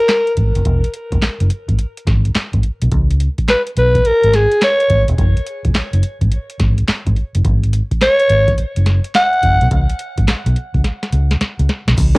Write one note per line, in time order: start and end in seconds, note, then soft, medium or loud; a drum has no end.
0.00 0.34 A#4 medium
0.09 snare loud
0.09 clap medium
0.09 closed hi-hat medium
0.27 closed hi-hat soft
0.37 0.51 G#1 medium
0.37 kick medium
0.37 closed hi-hat medium
0.55 0.63 F#1 medium
0.55 closed hi-hat medium
0.65 0.79 E1 loud
0.65 kick medium
0.65 closed hi-hat medium
0.84 closed hi-hat soft
0.94 closed hi-hat medium
1.12 1.20 E1 loud
1.12 kick medium
1.12 closed hi-hat soft
1.22 snare loud
1.22 clap medium
1.22 closed hi-hat medium
1.40 1.48 F#1 loud
1.40 closed hi-hat medium
1.50 closed hi-hat medium
1.68 1.76 G#1 medium
1.68 kick medium
1.68 closed hi-hat soft
1.79 closed hi-hat medium
1.97 closed hi-hat medium
2.07 2.28 G#1 medium
2.07 kick medium
2.07 snare medium
2.07 closed hi-hat medium
2.25 closed hi-hat medium
2.35 muted fingered electric bass stroke soft
2.35 snare loud
2.35 clap medium
2.35 closed hi-hat medium
2.53 2.61 G#1 medium
2.53 kick medium
2.53 closed hi-hat soft
2.63 closed hi-hat medium
2.82 2.90 B1 medium
2.82 closed hi-hat medium
2.92 3.27 C#2 loud
2.92 kick loud
2.92 closed hi-hat medium
3.11 closed hi-hat medium
3.20 closed hi-hat medium
3.38 kick medium
3.38 closed hi-hat soft
3.48 3.62 B4 medium
3.48 snare loud
3.48 clap medium
3.48 closed hi-hat medium
3.67 closed hi-hat soft
3.77 3.98 B1 medium
3.77 4.09 B4 medium
3.77 closed hi-hat medium
3.95 kick medium
3.95 closed hi-hat soft
4.05 4.37 A#4 medium
4.05 closed hi-hat medium
4.23 4.45 G#1 medium
4.23 closed hi-hat medium
4.33 4.63 G#4 medium
4.33 snare medium
4.33 closed hi-hat medium
4.51 closed hi-hat soft
4.61 5.06 C#5 loud
4.61 snare loud
4.61 clap medium
4.61 closed hi-hat medium
4.80 closed hi-hat soft
4.90 5.04 G#1 loud
4.90 kick medium
4.90 closed hi-hat medium
5.08 5.16 E1 medium
5.08 closed hi-hat medium
5.18 5.32 F#1 medium
5.18 kick loud
5.18 closed hi-hat medium
5.37 closed hi-hat medium
5.47 closed hi-hat medium
5.65 5.72 E1 medium
5.65 kick medium
5.65 closed hi-hat soft
5.75 muted fingered electric bass stroke soft
5.75 snare loud
5.75 clap medium
5.75 closed hi-hat medium
5.93 6.01 F#1 medium
5.93 closed hi-hat medium
6.03 closed hi-hat medium
6.21 6.29 G#1 medium
6.21 kick medium
6.21 closed hi-hat soft
6.32 closed hi-hat medium
6.50 closed hi-hat soft
6.60 6.81 G#1 medium
6.60 kick medium
6.60 snare medium
6.60 closed hi-hat medium
6.78 closed hi-hat medium
6.88 muted fingered electric bass stroke soft
6.88 snare loud
6.88 clap medium
6.88 closed hi-hat medium
7.07 7.14 G#1 medium
7.07 kick medium
7.07 closed hi-hat soft
7.17 closed hi-hat medium
7.35 7.43 F#1 medium
7.35 closed hi-hat medium
7.45 7.80 G#1 medium
7.45 kick medium
7.45 closed hi-hat medium
7.64 closed hi-hat soft
7.73 closed hi-hat medium
7.91 kick medium
7.91 closed hi-hat soft
8.01 8.54 C#5 loud
8.01 snare loud
8.01 clap medium
8.01 closed hi-hat medium
8.20 closed hi-hat soft
8.30 8.51 G#1 medium
8.30 closed hi-hat medium
8.48 kick medium
8.48 closed hi-hat soft
8.58 muted fingered electric bass stroke soft
8.58 closed hi-hat medium
8.76 8.98 F#1 medium
8.76 closed hi-hat medium
8.86 snare medium
8.86 closed hi-hat medium
9.04 closed hi-hat medium
9.14 9.68 F#5 loud
9.14 snare loud
9.14 clap medium
9.14 closed hi-hat medium
9.33 closed hi-hat soft
9.43 9.57 F#1 medium
9.43 kick medium
9.43 closed hi-hat medium
9.61 9.69 B1 medium
9.61 closed hi-hat medium
9.71 9.85 C#2 loud
9.71 kick loud
9.71 closed hi-hat medium
9.90 closed hi-hat soft
9.99 closed hi-hat medium
10.18 10.25 G#1 loud
10.18 kick medium
10.18 closed hi-hat soft
10.28 muted fingered electric bass stroke soft
10.28 snare loud
10.28 clap medium
10.28 closed hi-hat medium
10.46 10.54 B1 loud
10.46 closed hi-hat medium
10.56 closed hi-hat medium
10.74 10.82 C#2 medium
10.74 kick medium
10.74 closed hi-hat soft
10.84 snare medium
10.84 closed hi-hat medium
11.03 snare soft
11.03 closed hi-hat soft
11.12 11.34 C#2 medium
11.12 closed hi-hat medium
11.31 snare medium
11.31 closed hi-hat soft
11.41 muted fingered electric bass stroke soft
11.41 snare medium
11.41 closed hi-hat medium
11.59 11.67 C#2 medium
11.59 closed hi-hat soft
11.69 snare medium
11.69 closed hi-hat medium
11.88 11.95 B1 medium
11.88 snare medium
11.88 closed hi-hat medium
11.98 12.18 C#2 loud
11.98 kick loud
11.98 closed hi-hat medium
11.98 crash medium
11.98 tambourine medium
11.98 shaker medium